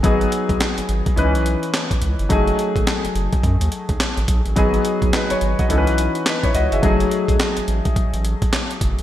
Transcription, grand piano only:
0.03 1.14 F#3 medium
0.03 1.15 B3 medium
0.03 1.15 D#4 medium
0.03 1.16 G#4 medium
1.16 2.28 E3 medium
1.16 2.28 C#4 medium
1.16 2.28 D#4 medium
1.16 2.29 B4 medium
2.29 4.52 F#3 medium
2.29 4.53 A3 medium
2.29 4.53 D#4 medium
2.29 4.53 G#4 medium
4.56 5.67 F#3 medium
4.56 5.68 B3 medium
4.56 5.12 D#4 medium
4.56 5.13 G#4 medium
5.13 5.30 D#4 medium
5.13 5.30 B4 medium
5.31 5.58 C#5 medium
5.59 5.86 F#4 medium
5.59 5.86 D#5 medium
5.69 6.80 E3 medium
5.69 6.81 C#4 medium
5.69 6.25 D#4 medium
5.69 5.78 A4 medium
5.78 6.25 B4 medium
6.27 6.43 D#4 medium
6.27 6.43 B4 medium
6.44 6.55 E4 medium
6.44 6.55 C#5 medium
6.55 6.72 F#4 medium
6.55 6.71 D#5 medium
6.72 6.83 G#4 medium
6.72 6.99 E5 medium
6.82 9.03 F#3 medium
6.82 9.03 A3 medium
6.82 9.03 D#4 medium
6.82 9.03 G#4 medium

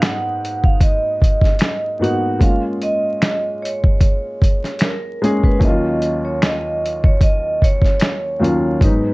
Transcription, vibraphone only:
0.03 0.66 F#5 loud
0.64 0.80 F5 loud
0.82 2.05 D#5 loud
2.02 2.43 F#5 loud
2.42 2.60 F5 medium
2.83 3.64 D#5 loud
3.62 4.85 C#5 medium
4.82 5.40 A#4 medium
5.45 5.62 B4 medium
5.63 6.20 D#5 medium
6.25 6.42 C#5 medium
6.43 7.06 D#5 medium
7.05 7.13 C#5 medium
7.23 7.63 D#5 medium
7.63 8.86 C#5 loud
8.84 9.14 B4 medium

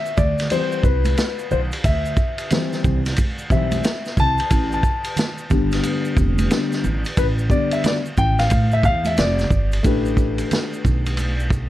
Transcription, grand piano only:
0.00 0.18 E5 medium
0.17 0.48 D5 medium
0.51 0.81 E3 medium
0.51 0.81 G3 soft
0.51 0.81 C4 medium
0.51 0.86 C5 loud
0.84 1.47 B4 medium
1.52 1.59 C5 medium
1.85 2.81 E5 medium
2.51 2.99 E3 medium
2.51 2.99 G3 soft
2.51 2.99 C4 medium
3.51 3.81 E3 medium
3.51 3.81 G3 soft
3.51 3.81 C4 medium
3.51 4.14 E5 medium
4.20 4.69 A5 loud
4.74 5.69 A5 medium
5.51 6.49 D3 medium
5.51 6.50 G3 medium
5.51 6.50 B3 medium
6.51 6.81 D3 medium
6.51 6.81 G3 soft
6.51 6.81 B3 medium
7.18 7.26 B4 loud
7.49 7.98 D3 medium
7.49 7.98 G3 soft
7.49 7.99 B3 medium
7.49 7.73 D5 medium
7.73 7.84 E5 medium
7.86 7.93 D5 medium
8.18 8.40 G5 loud
8.39 8.73 F5 medium
8.73 8.85 E5 loud
8.85 9.07 F5 loud
9.07 9.19 E5 medium
9.19 9.81 D5 medium
9.83 11.69 A3 medium
9.83 11.69 D4 medium
9.83 11.69 G4 medium
9.83 11.69 B4 medium

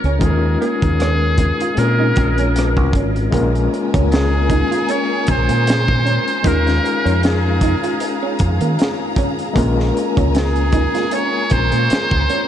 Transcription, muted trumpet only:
0.22 0.58 G#4 medium
0.61 1.80 G#4 medium
1.78 2.94 A#4 medium
4.13 4.93 G#4 medium
4.91 5.29 C#5 medium
5.30 6.49 C5 loud
6.47 7.23 A#4 medium
7.25 8.36 G#4 medium
10.37 11.15 G#4 medium
11.14 11.54 C#5 loud
11.52 12.48 C5 loud

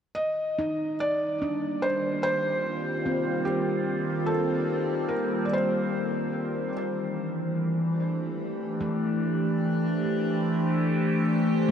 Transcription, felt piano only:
0.15 0.95 D#5 medium
1.00 1.85 D5 medium
1.82 2.22 C5 medium
2.23 3.43 C5 medium
3.45 4.31 G4 medium
4.26 5.13 A4 medium
5.09 5.45 A#4 medium
5.45 5.52 D5 soft
5.53 6.72 C5 medium

